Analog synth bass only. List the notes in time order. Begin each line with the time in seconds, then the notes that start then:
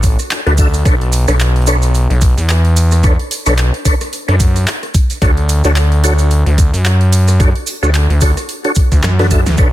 Already playing: A1
0.47 D2
0.86 B1
1.28 B1
2.10 B1
2.37 E2
3.47 B1
4.28 F#2
5.22 D2
5.65 D2
6.46 D2
6.73 F#2
7.83 D2
8.10 D2
8.92 D2
9.04 F#2
9.46 D2
9.58 B1